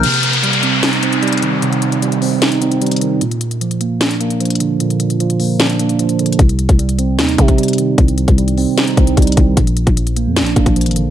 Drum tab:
CC |x-----------------------------------------------------------------------------------------------|------------------------------------------------------------------------------------------------|------------------------------------------------------------------------------------------------|------------------------------------------------------------------------------------------------|
HH |x-----x-----x-----x-----x-----x-----x-----------x-----x-----x-----x-----x--x--x--x--x-----------|x-----x-----x-----x-----x-----x-----o-----------x-----x-----x-----x-----x--x--x--x--x-----------|x-----x-----x-----x-----x-----x-----x-----------x-----x-----x-----x-----x--x--x--x--x-----------|x-----x-----x-----x-----x-----x-----o-----------x-----x-----x-----x-----x-----x-----x---x---x---|
SD |------------------------------------------------o-----------------------------------------------|------------------------------------------------o-----------------------------------------------|------------------------------------------------o-----------------------------------------------|------------------------------------------------o-----------------------------------------------|
BD |------------------------------------------------------------------------------------------------|------------------------------------------------------------------------------------------------|------------------------------------------------------------------------------------------------|------------------------------------------------------------------------------------------------|

CC |------------------------------------------------------------------------------------------------|------------------------------------------------------------------------------------------------|------------------------------------------------------------------------------------------------|
HH |x-----x-----x-----x-----x-----x-----x-----------x-----x-----x-----x-----x--x--x--x--x-----------|x-----x-----x-----x-----x-----x-----o-----------x-----x-----x-----x-----x--x--x--x--x-----------|x-----x-----x-----x-----x-----x-----x-----------x-----x-----x-----x-----x--x--x--x--x-----------|
SD |------------------------------------------------o-----------------------------------------------|------------------------------------------------o-----------------------------------------------|------------------------------------------------o-----------------------------------------------|
BD |o-----------------o-----------------------------------------o-----o-----------------------------|o-----------------o-----------------------------------------o-----------o-----------o-----------|o-----------------o-----------------------------------------o-----o-----------------------------|